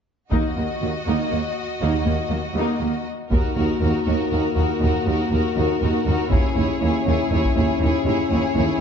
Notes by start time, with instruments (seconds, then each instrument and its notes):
0.31 cello section D#2, double bass section D#2, viola section A#3 D#4, violin section F#4 D#5, taiko
0.56 cello section D#2, viola section A#3
0.82 cello section D#2, viola section F#3 A#3
1.07 cello section D#2, viola section A#3 D#4
1.31 cello section D#2, viola section A#3
1.81 cello section D#2, double bass section D#2, viola section A#3 D#4
2.05 cello section D#2, viola section A#3
2.30 cello section D#2, viola section F#3 A#3
2.55 cello section D#2, viola section A#3 D#4
2.81 cello section D#2, viola section A#3
3.30 cello section D#2, double bass section D#2, french horn section A#3 F#4, viola section D#4, violin section F#4 A#4, taiko
3.56 cello section D#2, double bass section D#2, viola section D#4, violin section F#4 A#4
3.81 cello section D#2, double bass section D#2, viola section D#4, violin section F#4 A#4
4.05 cello section D#2, double bass section D#2, viola section D#4, violin section F#4 A#4
4.31 cello section D#2, double bass section D#2, viola section D#4, violin section F#4 A#4
4.56 cello section D#2, double bass section D#2, viola section D#4, violin section F#4 A#4
4.81 cello section D#2, double bass section D#2, viola section D#4, violin section F#4 A#4
5.06 cello section D#2, double bass section D#2, viola section D#4, violin section F#4 A#4
5.30 cello section D#2, double bass section D#2, viola section D#4, violin section F#4 A#4
5.56 cello section D#2, double bass section D#2, viola section D#4, violin section F#4 A#4
5.81 cello section D#2, double bass section D#2, viola section D#4, violin section F#4 A#4
6.05 cello section D#2, double bass section D#2, viola section D#4, violin section F#4 A#4
6.30 cello section D#2, double bass section D#2, french horn section C#4 E4, viola section E4, violin section G#4 C#5, taiko
6.55 cello section D#2, double bass section D#2, viola section E4, violin section G#4 C#5
6.80 cello section D#2, double bass section D#2, viola section E4, violin section G#4 C#5
7.05 cello section D#2, double bass section D#2, viola section E4, violin section G#4 C#5
7.30 cello section D#2, double bass section D#2, viola section E4, violin section G#4 C#5
7.45 taiko
7.56 cello section D#2, double bass section D#2, viola section E4, violin section G#4 C#5
7.80 cello section D#2, double bass section D#2, viola section E4, violin section C#5
7.84 violin section G#4
8.05 cello section D#2, double bass section D#2, viola section E4, violin section G#4 C#5
8.29 cello section D#2, double bass section D#2, viola section E4, violin section G#4 C#5
8.53 cello section D#2, viola section E4, violin section G#4 C#5
8.57 double bass section D#2